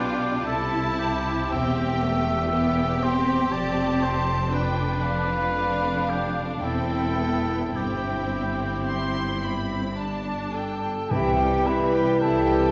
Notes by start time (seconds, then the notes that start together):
Already playing: B1 B2 D4 F4 G4 D5
0.45 C2 C3 E4 A4 A5
0.99 G4
1.51 E1 E2 C4 G4 E5 G5
2.03 A3
2.52 B3 G4 G5
3.02 C4 C5
3.52 F1 F2 C4 D5 A5
4.03 C5
4.47 C5
4.52 D4 B4 G5
5.03 F5
5.55 D4
6.09 G4
6.63 E1 E2 C4 E4 A4 G5
7.18 B3
7.75 G1 G2 C4 E4 G4 G5
8.87 C6
9.42 B5
9.98 D4 A5
10.54 A4 G5 A5
11.10 C2 C3 E3 G3 E4 G4 E5 G5
11.38 G3 G4 G5
11.66 E3 E4 B4 E5 B5
11.94 G3 G4 G5
12.20 C2 C3 E3 E4 A4 E5 A5
12.47 G3 G4 G5